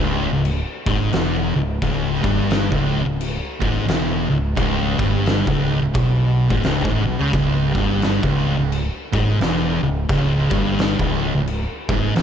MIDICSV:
0, 0, Header, 1, 4, 480
1, 0, Start_track
1, 0, Key_signature, 4, "minor"
1, 0, Tempo, 688073
1, 1270, Time_signature, 4, 2, 24, 8
1, 8527, End_track
2, 0, Start_track
2, 0, Title_t, "Distorted electric guitar"
2, 0, Program_c, 0, 30
2, 0, Note_on_c, 0, 37, 101
2, 213, Note_off_c, 0, 37, 0
2, 221, Note_on_c, 0, 37, 72
2, 401, Note_off_c, 0, 37, 0
2, 603, Note_on_c, 0, 44, 96
2, 784, Note_off_c, 0, 44, 0
2, 787, Note_on_c, 0, 40, 116
2, 1072, Note_off_c, 0, 40, 0
2, 1083, Note_on_c, 0, 37, 83
2, 1233, Note_off_c, 0, 37, 0
2, 1271, Note_on_c, 0, 37, 106
2, 1553, Note_off_c, 0, 37, 0
2, 1561, Note_on_c, 0, 43, 106
2, 1886, Note_off_c, 0, 43, 0
2, 1894, Note_on_c, 0, 37, 92
2, 2124, Note_off_c, 0, 37, 0
2, 2133, Note_on_c, 0, 37, 74
2, 2315, Note_off_c, 0, 37, 0
2, 2527, Note_on_c, 0, 44, 96
2, 2705, Note_off_c, 0, 44, 0
2, 2708, Note_on_c, 0, 40, 106
2, 2991, Note_off_c, 0, 40, 0
2, 2999, Note_on_c, 0, 37, 77
2, 3150, Note_off_c, 0, 37, 0
2, 3183, Note_on_c, 0, 37, 108
2, 3469, Note_off_c, 0, 37, 0
2, 3484, Note_on_c, 0, 43, 104
2, 3808, Note_off_c, 0, 43, 0
2, 3819, Note_on_c, 0, 37, 93
2, 4049, Note_off_c, 0, 37, 0
2, 4058, Note_on_c, 0, 37, 75
2, 4146, Note_off_c, 0, 37, 0
2, 4149, Note_on_c, 0, 47, 104
2, 4529, Note_off_c, 0, 47, 0
2, 4545, Note_on_c, 0, 44, 102
2, 4629, Note_off_c, 0, 44, 0
2, 4639, Note_on_c, 0, 37, 100
2, 4771, Note_off_c, 0, 37, 0
2, 4783, Note_on_c, 0, 44, 112
2, 4916, Note_off_c, 0, 44, 0
2, 4925, Note_on_c, 0, 47, 110
2, 5012, Note_off_c, 0, 47, 0
2, 5020, Note_on_c, 0, 49, 107
2, 5106, Note_off_c, 0, 49, 0
2, 5115, Note_on_c, 0, 37, 104
2, 5396, Note_off_c, 0, 37, 0
2, 5412, Note_on_c, 0, 43, 99
2, 5733, Note_off_c, 0, 43, 0
2, 5748, Note_on_c, 0, 37, 95
2, 5977, Note_off_c, 0, 37, 0
2, 5988, Note_on_c, 0, 37, 74
2, 6164, Note_off_c, 0, 37, 0
2, 6370, Note_on_c, 0, 44, 99
2, 6550, Note_off_c, 0, 44, 0
2, 6564, Note_on_c, 0, 40, 101
2, 6842, Note_off_c, 0, 40, 0
2, 6857, Note_on_c, 0, 37, 80
2, 7002, Note_off_c, 0, 37, 0
2, 7042, Note_on_c, 0, 37, 107
2, 7321, Note_off_c, 0, 37, 0
2, 7332, Note_on_c, 0, 43, 95
2, 7655, Note_off_c, 0, 43, 0
2, 7679, Note_on_c, 0, 37, 91
2, 7902, Note_off_c, 0, 37, 0
2, 7911, Note_on_c, 0, 37, 77
2, 8088, Note_off_c, 0, 37, 0
2, 8301, Note_on_c, 0, 44, 89
2, 8478, Note_off_c, 0, 44, 0
2, 8483, Note_on_c, 0, 40, 106
2, 8527, Note_off_c, 0, 40, 0
2, 8527, End_track
3, 0, Start_track
3, 0, Title_t, "Fingered electric bass"
3, 0, Program_c, 1, 33
3, 0, Note_on_c, 1, 25, 92
3, 202, Note_off_c, 1, 25, 0
3, 216, Note_on_c, 1, 25, 76
3, 440, Note_off_c, 1, 25, 0
3, 606, Note_on_c, 1, 32, 93
3, 779, Note_off_c, 1, 32, 0
3, 792, Note_on_c, 1, 28, 96
3, 1062, Note_off_c, 1, 28, 0
3, 1085, Note_on_c, 1, 25, 86
3, 1259, Note_off_c, 1, 25, 0
3, 1270, Note_on_c, 1, 25, 110
3, 1541, Note_off_c, 1, 25, 0
3, 1565, Note_on_c, 1, 31, 89
3, 1873, Note_off_c, 1, 31, 0
3, 1897, Note_on_c, 1, 25, 96
3, 2119, Note_off_c, 1, 25, 0
3, 2132, Note_on_c, 1, 25, 85
3, 2356, Note_off_c, 1, 25, 0
3, 2520, Note_on_c, 1, 32, 97
3, 2695, Note_off_c, 1, 32, 0
3, 2709, Note_on_c, 1, 28, 96
3, 2980, Note_off_c, 1, 28, 0
3, 3003, Note_on_c, 1, 25, 81
3, 3177, Note_off_c, 1, 25, 0
3, 3189, Note_on_c, 1, 25, 111
3, 3460, Note_off_c, 1, 25, 0
3, 3483, Note_on_c, 1, 31, 82
3, 3793, Note_off_c, 1, 31, 0
3, 3816, Note_on_c, 1, 25, 96
3, 4039, Note_off_c, 1, 25, 0
3, 4057, Note_on_c, 1, 25, 84
3, 4143, Note_off_c, 1, 25, 0
3, 4148, Note_on_c, 1, 35, 82
3, 4507, Note_off_c, 1, 35, 0
3, 4537, Note_on_c, 1, 32, 99
3, 4624, Note_off_c, 1, 32, 0
3, 4634, Note_on_c, 1, 25, 91
3, 4767, Note_off_c, 1, 25, 0
3, 4779, Note_on_c, 1, 32, 89
3, 4913, Note_off_c, 1, 32, 0
3, 4933, Note_on_c, 1, 35, 95
3, 5015, Note_off_c, 1, 35, 0
3, 5025, Note_on_c, 1, 37, 98
3, 5108, Note_off_c, 1, 37, 0
3, 5119, Note_on_c, 1, 25, 106
3, 5386, Note_off_c, 1, 25, 0
3, 5405, Note_on_c, 1, 31, 94
3, 5715, Note_off_c, 1, 31, 0
3, 5742, Note_on_c, 1, 25, 89
3, 5963, Note_off_c, 1, 25, 0
3, 5981, Note_on_c, 1, 25, 81
3, 6203, Note_off_c, 1, 25, 0
3, 6373, Note_on_c, 1, 32, 97
3, 6544, Note_off_c, 1, 32, 0
3, 6559, Note_on_c, 1, 28, 99
3, 6828, Note_off_c, 1, 28, 0
3, 6850, Note_on_c, 1, 25, 79
3, 7023, Note_off_c, 1, 25, 0
3, 7039, Note_on_c, 1, 25, 106
3, 7308, Note_off_c, 1, 25, 0
3, 7331, Note_on_c, 1, 31, 86
3, 7640, Note_off_c, 1, 31, 0
3, 7672, Note_on_c, 1, 25, 88
3, 7891, Note_off_c, 1, 25, 0
3, 7912, Note_on_c, 1, 25, 84
3, 8131, Note_off_c, 1, 25, 0
3, 8296, Note_on_c, 1, 32, 98
3, 8468, Note_off_c, 1, 32, 0
3, 8486, Note_on_c, 1, 28, 94
3, 8527, Note_off_c, 1, 28, 0
3, 8527, End_track
4, 0, Start_track
4, 0, Title_t, "Drums"
4, 313, Note_on_c, 9, 49, 62
4, 383, Note_off_c, 9, 49, 0
4, 603, Note_on_c, 9, 36, 112
4, 673, Note_off_c, 9, 36, 0
4, 786, Note_on_c, 9, 49, 56
4, 795, Note_on_c, 9, 38, 104
4, 856, Note_off_c, 9, 49, 0
4, 865, Note_off_c, 9, 38, 0
4, 1268, Note_on_c, 9, 49, 59
4, 1270, Note_on_c, 9, 36, 94
4, 1338, Note_off_c, 9, 49, 0
4, 1339, Note_off_c, 9, 36, 0
4, 1563, Note_on_c, 9, 36, 111
4, 1633, Note_off_c, 9, 36, 0
4, 1748, Note_on_c, 9, 49, 61
4, 1757, Note_on_c, 9, 38, 115
4, 1818, Note_off_c, 9, 49, 0
4, 1827, Note_off_c, 9, 38, 0
4, 1897, Note_on_c, 9, 36, 98
4, 1967, Note_off_c, 9, 36, 0
4, 2236, Note_on_c, 9, 49, 67
4, 2306, Note_off_c, 9, 49, 0
4, 2524, Note_on_c, 9, 36, 107
4, 2593, Note_off_c, 9, 36, 0
4, 2709, Note_on_c, 9, 49, 64
4, 2718, Note_on_c, 9, 38, 112
4, 2779, Note_off_c, 9, 49, 0
4, 2788, Note_off_c, 9, 38, 0
4, 3190, Note_on_c, 9, 36, 116
4, 3190, Note_on_c, 9, 49, 64
4, 3259, Note_off_c, 9, 36, 0
4, 3260, Note_off_c, 9, 49, 0
4, 3483, Note_on_c, 9, 36, 114
4, 3552, Note_off_c, 9, 36, 0
4, 3671, Note_on_c, 9, 49, 57
4, 3680, Note_on_c, 9, 38, 118
4, 3740, Note_off_c, 9, 49, 0
4, 3749, Note_off_c, 9, 38, 0
4, 3818, Note_on_c, 9, 36, 96
4, 3888, Note_off_c, 9, 36, 0
4, 4151, Note_on_c, 9, 36, 117
4, 4151, Note_on_c, 9, 49, 63
4, 4220, Note_off_c, 9, 36, 0
4, 4221, Note_off_c, 9, 49, 0
4, 4538, Note_on_c, 9, 36, 97
4, 4607, Note_off_c, 9, 36, 0
4, 4629, Note_on_c, 9, 49, 54
4, 4638, Note_on_c, 9, 38, 114
4, 4699, Note_off_c, 9, 49, 0
4, 4708, Note_off_c, 9, 38, 0
4, 4779, Note_on_c, 9, 36, 113
4, 4849, Note_off_c, 9, 36, 0
4, 5116, Note_on_c, 9, 36, 112
4, 5121, Note_on_c, 9, 49, 57
4, 5185, Note_off_c, 9, 36, 0
4, 5190, Note_off_c, 9, 49, 0
4, 5406, Note_on_c, 9, 36, 113
4, 5476, Note_off_c, 9, 36, 0
4, 5595, Note_on_c, 9, 49, 61
4, 5604, Note_on_c, 9, 38, 119
4, 5665, Note_off_c, 9, 49, 0
4, 5674, Note_off_c, 9, 38, 0
4, 5743, Note_on_c, 9, 36, 108
4, 5812, Note_off_c, 9, 36, 0
4, 6083, Note_on_c, 9, 49, 64
4, 6153, Note_off_c, 9, 49, 0
4, 6372, Note_on_c, 9, 36, 108
4, 6442, Note_off_c, 9, 36, 0
4, 6565, Note_on_c, 9, 49, 57
4, 6574, Note_on_c, 9, 38, 102
4, 6634, Note_off_c, 9, 49, 0
4, 6643, Note_off_c, 9, 38, 0
4, 7041, Note_on_c, 9, 36, 110
4, 7041, Note_on_c, 9, 49, 61
4, 7110, Note_off_c, 9, 49, 0
4, 7111, Note_off_c, 9, 36, 0
4, 7333, Note_on_c, 9, 36, 104
4, 7403, Note_off_c, 9, 36, 0
4, 7526, Note_on_c, 9, 49, 64
4, 7535, Note_on_c, 9, 38, 112
4, 7596, Note_off_c, 9, 49, 0
4, 7605, Note_off_c, 9, 38, 0
4, 7670, Note_on_c, 9, 36, 95
4, 7739, Note_off_c, 9, 36, 0
4, 8005, Note_on_c, 9, 49, 67
4, 8075, Note_off_c, 9, 49, 0
4, 8294, Note_on_c, 9, 36, 116
4, 8364, Note_off_c, 9, 36, 0
4, 8481, Note_on_c, 9, 49, 60
4, 8490, Note_on_c, 9, 38, 107
4, 8527, Note_off_c, 9, 38, 0
4, 8527, Note_off_c, 9, 49, 0
4, 8527, End_track
0, 0, End_of_file